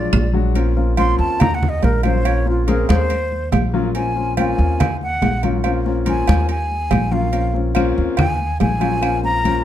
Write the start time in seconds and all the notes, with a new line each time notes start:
Already playing: F#3 G#3 D4 F4 D5
0.13 A#1, high conga, high timbale, low timbale, claves
0.33 F#3 G#3 D4 F#4
0.55 A#3 C4 C#4 F4, high conga, low agogo
0.76 A#3 C4 C#4 F4, high conga
0.97 A#3 C4 C#4 F4 C6, high conga, low agogo
1.19 D#2 A5, high conga
1.40 A#5, high conga, low conga, low agogo
1.55 F#5
1.63 high conga, low conga
1.69 D#5
1.83 A#1 A#4, high conga, low timbale, low agogo
2.03 F#3 A#3 C#4 F4 C5, high conga, low agogo
2.25 A#3 C4 C#4 F4 C#5, high conga, low agogo
2.46 A#3 C4 C#4 F4, high conga
2.67 A#3 C4 C#4 G#4 A#4, high conga, low agogo
2.89 D#2 C5, high conga, low agogo
3.10 high conga, low agogo
3.32 high conga
3.52 A#1, high conga, low timbale, low agogo
3.74 F#3 A#3 C#4 F4
3.95 A#3 C4 C#4 F4 G#5, high conga, low agogo
4.16 A#3 C4 C#4 F4, high conga
4.37 A#3 C4 C#4 F4 G#5, high conga, low agogo
4.58 D#2, high conga
4.80 high conga, low conga, low agogo
5.01 F#5, high conga
5.22 A#1, high conga, low timbale, low agogo
5.43 F#3 A#3 C#4 F4, high conga, low agogo
5.64 A#3 C4 C#4 F4, high conga, low agogo
5.85 A#3 C4 C#4 F4, high conga
6.05 A#3 C4 C#4 F4 G#5, high conga, low agogo
6.28 D#2, high conga, low agogo
6.49 G#5, high conga, low agogo
6.72 high conga
6.91 A#1, high conga, low timbale, low agogo
7.11 F#3 A#3 C#4 F4 F5
7.32 A#3 C4 C#4 F4, high conga, low agogo
7.53 A#3 C4 C#4 F4, high conga
7.75 A#3 C4 C#4 F4, high conga, low agogo, claves
7.98 D#2, high conga
8.17 G#5, high conga, low conga, low agogo, claves
8.40 high conga
8.60 A#1 G#5, high conga, low timbale, low agogo
8.80 F#3 A#3 C#4 F4, low agogo
9.01 A#3 C4 C#4 F4, high conga, low agogo, claves
9.23 A#3 C4 C#4 F4 A#5, high conga
9.44 A#3 C4 C#4 F4, high conga, low agogo